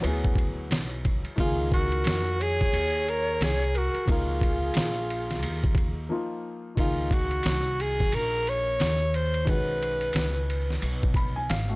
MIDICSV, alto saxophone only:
0, 0, Header, 1, 2, 480
1, 0, Start_track
1, 0, Key_signature, -5, "major"
1, 0, Tempo, 674157
1, 985, Time_signature, 4, 2, 24, 8
1, 8370, End_track
2, 0, Start_track
2, 0, Title_t, "Alto saxophone"
2, 0, Program_c, 0, 65
2, 997, Note_on_c, 0, 65, 85
2, 1215, Note_off_c, 0, 65, 0
2, 1238, Note_on_c, 0, 66, 94
2, 1724, Note_on_c, 0, 68, 121
2, 1735, Note_off_c, 0, 66, 0
2, 2205, Note_on_c, 0, 70, 97
2, 2216, Note_off_c, 0, 68, 0
2, 2446, Note_on_c, 0, 68, 90
2, 2457, Note_off_c, 0, 70, 0
2, 2690, Note_on_c, 0, 66, 91
2, 2700, Note_off_c, 0, 68, 0
2, 2918, Note_off_c, 0, 66, 0
2, 2929, Note_on_c, 0, 65, 75
2, 4329, Note_off_c, 0, 65, 0
2, 4838, Note_on_c, 0, 65, 78
2, 5082, Note_on_c, 0, 66, 92
2, 5093, Note_off_c, 0, 65, 0
2, 5563, Note_on_c, 0, 68, 92
2, 5574, Note_off_c, 0, 66, 0
2, 5802, Note_on_c, 0, 70, 100
2, 5813, Note_off_c, 0, 68, 0
2, 6047, Note_on_c, 0, 73, 115
2, 6058, Note_off_c, 0, 70, 0
2, 6520, Note_on_c, 0, 72, 97
2, 6531, Note_off_c, 0, 73, 0
2, 6759, Note_on_c, 0, 71, 91
2, 6770, Note_off_c, 0, 72, 0
2, 7713, Note_off_c, 0, 71, 0
2, 8370, End_track
0, 0, End_of_file